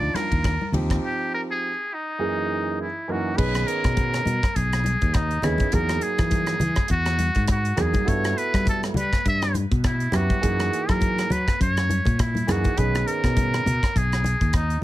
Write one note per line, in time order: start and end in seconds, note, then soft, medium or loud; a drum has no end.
0.00 0.12 D2 medium
0.00 0.48 F3 medium
0.00 0.48 D4 medium
0.00 0.49 D#4 medium
0.00 0.49 F4 medium
0.00 0.17 D5 loud
0.14 0.74 A#4 medium
0.14 cross-stick medium
0.14 ride medium
0.14 high conga medium
0.32 0.56 D#2 medium
0.32 kick medium
0.32 ride soft
0.44 kick medium
0.44 cross-stick medium
0.44 ride medium
0.61 high conga medium
0.72 0.98 D#2 medium
0.72 1.68 F3 medium
0.72 1.68 C4 medium
0.72 1.68 D#4 medium
0.72 1.69 G4 medium
0.72 ride medium
0.72 low conga medium
0.90 kick medium
0.90 cross-stick medium
0.90 ride medium
1.05 1.31 G4 medium
1.35 1.41 A#4 medium
1.51 1.95 G#4 medium
1.94 2.81 D#4 medium
2.19 2.83 F#2 medium
2.19 2.84 E3 medium
2.19 2.83 A#3 medium
2.19 2.84 D#4 medium
2.19 2.84 G#4 medium
2.81 3.13 E4 medium
3.08 3.30 F#2 medium
3.08 3.30 E3 medium
3.08 3.31 A#3 medium
3.08 3.31 D#4 medium
3.08 3.39 F#4 medium
3.08 3.31 A#4 medium
3.37 3.63 B1 loud
3.37 4.22 D#3 medium
3.37 4.22 B3 medium
3.37 4.23 C#4 medium
3.37 4.23 G#4 medium
3.37 3.69 B4 medium
3.37 kick medium
3.37 crash medium
3.55 cross-stick medium
3.55 closed hi-hat soft
3.67 4.57 A#4 medium
3.67 closed hi-hat medium
3.84 4.20 B2 medium
3.84 kick medium
3.84 cross-stick medium
3.84 closed hi-hat soft
3.97 kick loud
3.97 closed hi-hat medium
3.97 high conga medium
4.14 cross-stick medium
4.14 closed hi-hat soft
4.26 4.40 B2 medium
4.26 closed hi-hat medium
4.26 high conga medium
4.43 kick medium
4.43 cross-stick medium
4.43 closed hi-hat soft
4.56 4.95 B1 medium
4.56 5.17 G#4 medium
4.56 kick medium
4.56 closed hi-hat medium
4.73 cross-stick medium
4.73 closed hi-hat soft
4.84 closed hi-hat medium
4.84 high conga medium
5.02 5.37 D#2 medium
5.02 kick medium
5.02 closed hi-hat soft
5.14 5.46 D#4 medium
5.14 kick loud
5.14 cross-stick medium
5.14 closed hi-hat medium
5.31 closed hi-hat soft
5.42 5.57 D#2 medium
5.42 5.65 D#3 medium
5.42 5.66 B3 medium
5.42 5.66 C#4 medium
5.42 5.76 E4 medium
5.42 5.66 G#4 medium
5.42 cross-stick medium
5.42 closed hi-hat medium
5.42 low conga medium
5.58 kick medium
5.58 closed hi-hat soft
5.58 high conga medium
5.72 5.98 E2 loud
5.72 6.58 F#3 medium
5.72 6.58 A#3 medium
5.72 6.58 D#4 medium
5.72 6.58 G#4 medium
5.72 6.04 A#4 medium
5.72 kick medium
5.72 closed hi-hat medium
5.89 cross-stick medium
5.89 closed hi-hat soft
6.01 6.90 G#4 medium
6.01 closed hi-hat medium
6.18 6.54 E3 medium
6.18 kick medium
6.18 cross-stick medium
6.18 closed hi-hat soft
6.30 kick loud
6.30 closed hi-hat medium
6.30 high conga medium
6.46 cross-stick medium
6.46 closed hi-hat soft
6.60 6.75 E3 medium
6.60 closed hi-hat medium
6.60 high conga medium
6.60 low conga medium
6.76 kick medium
6.76 cross-stick medium
6.76 closed hi-hat soft
6.88 7.29 E2 medium
6.88 7.46 F#4 loud
6.88 kick medium
6.88 closed hi-hat medium
7.06 cross-stick medium
7.06 closed hi-hat soft
7.19 closed hi-hat medium
7.19 high conga medium
7.35 7.72 G#2 medium
7.35 kick medium
7.35 closed hi-hat soft
7.48 7.83 F#4 medium
7.48 kick loud
7.48 cross-stick medium
7.48 closed hi-hat medium
7.65 closed hi-hat soft
7.76 7.92 E2 medium
7.76 7.99 F#3 medium
7.76 8.00 A#3 medium
7.76 8.00 D#4 medium
7.76 8.00 G#4 medium
7.76 cross-stick medium
7.76 closed hi-hat medium
7.76 low conga medium
7.81 8.10 G#4 medium
7.94 kick medium
7.94 closed hi-hat soft
7.94 high conga medium
8.04 8.33 G2 loud
8.04 8.91 B3 medium
8.04 8.92 E4 medium
8.04 8.91 F#4 medium
8.04 8.91 A4 medium
8.04 kick medium
8.04 closed hi-hat medium
8.09 8.39 C#5 medium
8.24 cross-stick medium
8.24 closed hi-hat soft
8.38 8.67 B4 medium
8.38 closed hi-hat medium
8.54 8.90 G3 medium
8.54 kick medium
8.54 cross-stick medium
8.54 closed hi-hat soft
8.65 8.82 A4 medium
8.65 kick loud
8.65 closed hi-hat medium
8.65 high conga medium
8.83 cross-stick medium
8.83 closed hi-hat soft
8.94 9.10 G3 medium
8.94 closed hi-hat medium
8.94 high conga medium
8.94 low conga medium
8.98 9.24 B4 medium
9.13 kick medium
9.13 cross-stick medium
9.13 closed hi-hat soft
9.26 9.64 G2 medium
9.26 9.54 E5 loud
9.26 kick medium
9.26 closed hi-hat medium
9.42 cross-stick medium
9.42 closed hi-hat soft
9.54 closed hi-hat medium
9.54 high conga medium
9.71 10.07 B2 medium
9.71 kick medium
9.71 closed hi-hat soft
9.84 10.18 E4 medium
9.84 kick loud
9.84 cross-stick medium
9.84 closed hi-hat medium
10.00 closed hi-hat soft
10.12 10.27 F#2 medium
10.12 10.35 F#3 medium
10.12 10.35 B3 medium
10.12 10.35 E4 medium
10.12 10.35 G4 medium
10.12 cross-stick medium
10.12 closed hi-hat medium
10.12 low conga medium
10.16 10.92 F#4 medium
10.30 kick medium
10.30 closed hi-hat soft
10.30 high conga medium
10.41 10.68 F#2 loud
10.41 11.26 E3 medium
10.41 11.27 A#3 medium
10.41 11.27 D#4 medium
10.41 11.27 G#4 medium
10.41 kick medium
10.41 closed hi-hat medium
10.60 cross-stick medium
10.60 closed hi-hat soft
10.73 closed hi-hat medium
10.89 11.24 F#3 medium
10.89 11.33 A#4 loud
10.89 kick medium
10.89 cross-stick medium
10.89 closed hi-hat soft
11.01 kick loud
11.01 closed hi-hat medium
11.01 high conga medium
11.18 cross-stick medium
11.18 closed hi-hat soft
11.30 11.44 F#3 medium
11.30 11.61 B4 medium
11.30 closed hi-hat medium
11.30 low conga medium
11.48 kick medium
11.48 cross-stick medium
11.48 closed hi-hat soft
11.60 11.99 F#2 medium
11.60 12.22 C#5 loud
11.60 kick medium
11.60 closed hi-hat medium
11.77 cross-stick medium
11.77 closed hi-hat soft
11.89 closed hi-hat medium
11.89 high conga medium
12.05 12.42 A#2 medium
12.05 kick medium
12.05 closed hi-hat soft
12.05 low conga medium
12.19 12.53 E4 medium
12.19 kick loud
12.19 cross-stick medium
12.19 closed hi-hat medium
12.35 closed hi-hat soft
12.35 high conga medium
12.47 12.62 F#2 medium
12.47 12.70 E3 medium
12.47 12.70 A#3 medium
12.47 12.70 D#4 medium
12.47 12.70 G#4 medium
12.47 cross-stick medium
12.47 closed hi-hat medium
12.47 low conga medium
12.52 12.80 F#4 medium
12.64 kick medium
12.64 closed hi-hat soft
12.64 high conga medium
12.77 13.02 B1 loud
12.77 13.62 D#3 medium
12.77 13.62 B3 medium
12.77 13.62 C#4 medium
12.77 13.62 G#4 medium
12.77 13.09 B4 medium
12.77 kick medium
12.77 closed hi-hat medium
12.95 cross-stick medium
12.95 closed hi-hat soft
13.07 13.99 A#4 medium
13.07 closed hi-hat medium
13.24 13.59 B2 medium
13.24 kick medium
13.24 cross-stick medium
13.24 closed hi-hat soft
13.37 kick loud
13.37 closed hi-hat medium
13.37 high conga medium
13.54 cross-stick medium
13.54 closed hi-hat soft
13.66 13.80 B2 loud
13.66 closed hi-hat medium
13.66 high conga medium
13.66 low conga medium
13.83 kick medium
13.83 cross-stick medium
13.83 closed hi-hat soft
13.95 14.34 B1 medium
13.95 14.55 G#4 medium
13.95 kick medium
13.95 closed hi-hat medium
14.12 cross-stick medium
14.12 closed hi-hat soft
14.24 closed hi-hat medium
14.24 high conga medium
14.41 14.77 D#2 medium
14.41 kick medium
14.41 closed hi-hat soft
14.53 14.82 D#4 medium
14.53 kick loud
14.53 cross-stick medium
14.53 closed hi-hat medium
14.70 closed hi-hat soft